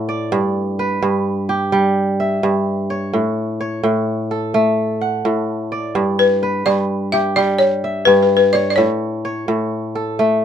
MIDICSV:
0, 0, Header, 1, 3, 480
1, 0, Start_track
1, 0, Tempo, 470219
1, 327, Time_signature, 12, 3, 24, 8
1, 10665, End_track
2, 0, Start_track
2, 0, Title_t, "Balafon"
2, 0, Program_c, 0, 12
2, 6320, Note_on_c, 0, 71, 73
2, 6796, Note_on_c, 0, 74, 78
2, 6816, Note_off_c, 0, 71, 0
2, 7272, Note_on_c, 0, 76, 74
2, 7295, Note_off_c, 0, 74, 0
2, 7514, Note_on_c, 0, 74, 84
2, 7525, Note_off_c, 0, 76, 0
2, 7624, Note_off_c, 0, 74, 0
2, 7743, Note_on_c, 0, 73, 84
2, 8221, Note_on_c, 0, 71, 85
2, 8249, Note_off_c, 0, 73, 0
2, 8385, Note_off_c, 0, 71, 0
2, 8397, Note_on_c, 0, 71, 55
2, 8529, Note_off_c, 0, 71, 0
2, 8541, Note_on_c, 0, 71, 72
2, 8706, Note_on_c, 0, 74, 77
2, 8718, Note_off_c, 0, 71, 0
2, 8874, Note_off_c, 0, 74, 0
2, 8886, Note_on_c, 0, 74, 61
2, 8939, Note_on_c, 0, 73, 76
2, 8962, Note_off_c, 0, 74, 0
2, 10665, Note_off_c, 0, 73, 0
2, 10665, End_track
3, 0, Start_track
3, 0, Title_t, "Kora"
3, 0, Program_c, 1, 46
3, 0, Note_on_c, 1, 45, 78
3, 0, Note_on_c, 1, 57, 66
3, 0, Note_on_c, 1, 78, 60
3, 88, Note_on_c, 1, 74, 62
3, 326, Note_on_c, 1, 43, 74
3, 378, Note_off_c, 1, 45, 0
3, 388, Note_off_c, 1, 78, 0
3, 808, Note_on_c, 1, 71, 64
3, 931, Note_off_c, 1, 57, 0
3, 1034, Note_off_c, 1, 43, 0
3, 1046, Note_on_c, 1, 43, 72
3, 1219, Note_off_c, 1, 74, 0
3, 1521, Note_on_c, 1, 67, 59
3, 1759, Note_on_c, 1, 55, 70
3, 2063, Note_off_c, 1, 71, 0
3, 2245, Note_on_c, 1, 76, 62
3, 2471, Note_off_c, 1, 43, 0
3, 2483, Note_on_c, 1, 43, 77
3, 2962, Note_on_c, 1, 73, 58
3, 2963, Note_off_c, 1, 67, 0
3, 3200, Note_on_c, 1, 45, 69
3, 3254, Note_off_c, 1, 43, 0
3, 3254, Note_off_c, 1, 55, 0
3, 3300, Note_off_c, 1, 76, 0
3, 3676, Note_off_c, 1, 73, 0
3, 3680, Note_on_c, 1, 73, 59
3, 3902, Note_off_c, 1, 45, 0
3, 3914, Note_on_c, 1, 45, 68
3, 4399, Note_on_c, 1, 69, 51
3, 4637, Note_on_c, 1, 57, 70
3, 4851, Note_off_c, 1, 73, 0
3, 5118, Note_on_c, 1, 78, 52
3, 5347, Note_off_c, 1, 45, 0
3, 5359, Note_on_c, 1, 45, 68
3, 5744, Note_off_c, 1, 69, 0
3, 5837, Note_on_c, 1, 74, 61
3, 6074, Note_on_c, 1, 43, 72
3, 6134, Note_off_c, 1, 45, 0
3, 6136, Note_off_c, 1, 78, 0
3, 6560, Note_on_c, 1, 71, 62
3, 6675, Note_off_c, 1, 57, 0
3, 6787, Note_off_c, 1, 43, 0
3, 6799, Note_on_c, 1, 43, 66
3, 6968, Note_off_c, 1, 74, 0
3, 7282, Note_on_c, 1, 67, 58
3, 7520, Note_on_c, 1, 55, 66
3, 7815, Note_off_c, 1, 71, 0
3, 8003, Note_on_c, 1, 76, 57
3, 8226, Note_off_c, 1, 43, 0
3, 8238, Note_on_c, 1, 43, 76
3, 8724, Note_off_c, 1, 67, 0
3, 8724, Note_on_c, 1, 73, 61
3, 8960, Note_on_c, 1, 45, 73
3, 9017, Note_off_c, 1, 43, 0
3, 9017, Note_off_c, 1, 55, 0
3, 9058, Note_off_c, 1, 76, 0
3, 9436, Note_off_c, 1, 73, 0
3, 9440, Note_on_c, 1, 73, 60
3, 9665, Note_off_c, 1, 45, 0
3, 9678, Note_on_c, 1, 45, 71
3, 10161, Note_on_c, 1, 69, 55
3, 10403, Note_on_c, 1, 57, 71
3, 10611, Note_off_c, 1, 73, 0
3, 10665, Note_off_c, 1, 45, 0
3, 10665, Note_off_c, 1, 57, 0
3, 10665, Note_off_c, 1, 69, 0
3, 10665, End_track
0, 0, End_of_file